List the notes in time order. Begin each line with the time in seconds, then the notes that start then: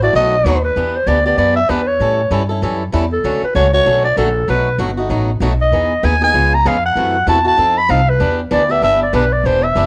Already playing: A1
0.02 A3 E4 F#4 D5
0.13 B1 B2 F#3 A3 D#4 F#4 D#5
0.44 D#2 B2 F#3 A3 D#4 F#4
0.64 B4
0.76 E2 E3 B3 D4 G4
0.96 C5
1.06 D2 E3 B3 D4 G4 D5
1.26 B3 D4 G4 D5
1.37 F#2 E3 B3 D4 G4 D5
1.56 E5
1.69 E2 E3 B3 D4 G4 B4
1.88 C#5
2.00 A2 E3 G3 C#4 E4 A4
2.31 G2 E3 G3 C#4 E4 A4
2.49 C#4 E4 A4
2.62 F#2 E3 G3 C#4 E4 A4
2.92 E2 E3 G3 C#4 E4 A4
3.13 A4
3.24 D2 D3 F#3 A3 C#4 F#4
3.42 B4, muted upright bass stroke
3.55 C#2 D3 F#3 A3 C#4 F#4 C#5
3.73 A3 C#4 F#4 C#5
3.85 B1 D3 F#3 A3 C#4 F#4
4.04 D5
4.17 A#1 D3 F#3 A3 C#4 F#4 A4
4.48 B1 B2 F#3 A3 D#4 F#4 B4
4.78 G1 B2 F#3 A3 D#4 F#4
4.97 A3 D#4 F#4
5.09 A1 B2 F#3 A3 D#4 F#4
5.40 B1 B2 F#3 A3 D#4 F#4
5.61 D#5
5.72 E2 E3 B3 D#4 G#4
6.03 D#2 E3 B3 D#4 G#4 G#5
6.22 B3 D#4 G#4 G#5
6.34 C#2 C#3 G#3 B3 F4 G#4
6.54 A#5
6.66 F2 C#3 G#3 B3 F4 G#4 F5
6.86 F#5
6.96 F#2 C3 E3 A3 E4 F#4
7.27 E2 C3 E3 A3 E4 F#4 A5
7.45 A3 E4 F#4 A5
7.57 F2 F3 C4 D#4 A4
7.78 B5
7.89 C2 F3 C4 D#4 A4 F5
8.09 B4
8.20 E2 E3 B3 D4 G4
8.51 D2 E3 B3 D4 G4 D5
8.69 B3 D4 G4 E5
8.82 G1 E3 B3 D4 G4 E5
9.03 D5
9.13 B1 E3 B3 D4 G4 B4
9.33 D5
9.44 E1 E3 B3 D4 G4 C5
9.63 E5
9.75 F#1 E3 B3 D4 G4